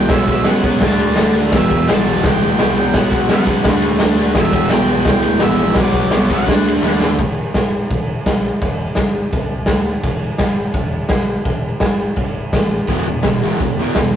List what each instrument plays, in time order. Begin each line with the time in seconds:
Already playing: lead electric guitar G5
0.09 fingered electric bass B1, distorted electric guitar B2 F#3 B3, lead electric guitar E5, kick, snare, ride
0.28 lead electric guitar E5, kick, ride
0.44 fingered electric bass F#2, distorted electric guitar B2 F#3, lead electric guitar F#5, snare, clap, ride
0.50 distorted electric guitar B3
0.63 distorted electric guitar B3, kick, ride
0.68 distorted electric guitar F#3
0.81 fingered electric bass D2, distorted electric guitar D3 A3, lead electric guitar A5, kick, snare, ride
0.87 distorted electric guitar D4
1.00 ride
1.16 fingered electric bass D2, distorted electric guitar D3 A3, snare, clap, ride
1.21 distorted electric guitar D4
1.35 distorted electric guitar D4, ride
1.39 distorted electric guitar A3
1.51 fingered electric bass E1, distorted electric guitar E2 B2, lead electric guitar E5, kick, snare, crash
1.56 distorted electric guitar E3
1.71 kick, ride
1.87 fingered electric bass B1, distorted electric guitar E2 B2, lead electric guitar A5, snare, clap, ride
1.92 distorted electric guitar E3
2.06 distorted electric guitar B2 E3, ride
2.24 fingered electric bass C2, distorted electric guitar E2 B2, lead electric guitar G5, kick, snare, ride
2.28 distorted electric guitar E3
2.41 fingered electric bass D2, ride
2.58 fingered electric bass C2, distorted electric guitar E2 B2, snare, clap, ride
2.63 distorted electric guitar E3
2.75 distorted electric guitar E3, ride
2.79 distorted electric guitar B2
2.94 fingered electric bass B1, distorted electric guitar B2 F#3, lead electric guitar F#5, kick, snare, ride
2.98 distorted electric guitar B3
3.11 kick, ride
3.29 fingered electric bass F#2, distorted electric guitar B2 F#3, snare, clap, ride
3.33 distorted electric guitar B3, lead electric guitar F#5
3.46 distorted electric guitar F#3 B3, kick, ride
3.64 fingered electric bass D2, distorted electric guitar D3 A3, kick, snare, ride
3.69 distorted electric guitar D4
3.82 ride
3.99 fingered electric bass D2, distorted electric guitar D3 A3, snare, clap, ride
4.04 distorted electric guitar D4
4.18 distorted electric guitar A3 D4, ride
4.34 fingered electric bass E1, distorted electric guitar E2 B2, lead electric guitar E5, kick, snare, crash
4.40 distorted electric guitar E3
4.53 kick, ride
4.69 fingered electric bass B1, distorted electric guitar E2 B2, lead electric guitar G5, snare, clap, ride
4.74 distorted electric guitar E3
4.88 distorted electric guitar E3, ride
4.93 distorted electric guitar B2
5.05 fingered electric bass C2, distorted electric guitar E2 B2, lead electric guitar G5, kick, snare, ride
5.10 distorted electric guitar E3
5.23 fingered electric bass D2, ride
5.39 fingered electric bass A#1, distorted electric guitar E2, lead electric guitar E5, snare, clap, ride
5.44 distorted electric guitar B2 E3
5.57 distorted electric guitar E3, ride
5.64 distorted electric guitar B2
5.74 fingered electric bass B1, distorted electric guitar B2, lead electric guitar D5, kick, snare, ride
5.80 distorted electric guitar F#3 B3
5.93 kick, ride
6.11 fingered electric bass C2, distorted electric guitar B2, snare, clap, ride
6.16 distorted electric guitar F#3 B3
6.30 distorted electric guitar F#3 B3, kick, ride
6.34 lead electric guitar F#5
6.47 fingered electric bass D2, distorted electric guitar D3 A3, kick, snare, ride
6.51 distorted electric guitar D4
6.68 ride
6.82 fingered electric bass D#2, distorted electric guitar D3 A3 D4, snare, clap
6.99 distorted electric guitar D4, snare
7.03 distorted electric guitar A3
7.19 fingered electric bass E1, kick, crash
7.54 fingered electric bass G1, kick, snare, crash
7.90 fingered electric bass E1, kick, crash
8.26 fingered electric bass B1, kick, snare, crash
8.62 fingered electric bass E1, kick, crash
8.95 fingered electric bass G1, kick, snare, crash
9.32 fingered electric bass C2, kick, crash
9.66 fingered electric bass D2, kick, snare, crash
10.03 fingered electric bass E1, kick, crash
10.38 fingered electric bass G1, kick, snare, crash
10.74 fingered electric bass E1, kick, crash
11.09 fingered electric bass B1, kick, snare, crash
11.45 fingered electric bass E1, kick, crash
11.80 fingered electric bass G1, kick, snare, crash
12.16 fingered electric bass G1, kick, crash
12.53 fingered electric bass A1, kick, snare, crash
12.87 fingered electric bass E1, distorted electric guitar E2 B2 E3, kick, crash
13.06 distorted electric guitar E2 B2
13.23 fingered electric bass G1, distorted electric guitar E2 B2, kick, snare, clap, crash
13.43 distorted electric guitar E2 B2 E3
13.60 fingered electric bass E1, distorted electric guitar E2 B2, kick, crash
13.79 distorted electric guitar E2 B2 E3
13.95 fingered electric bass B1, distorted electric guitar E2 B2, kick, snare, clap, crash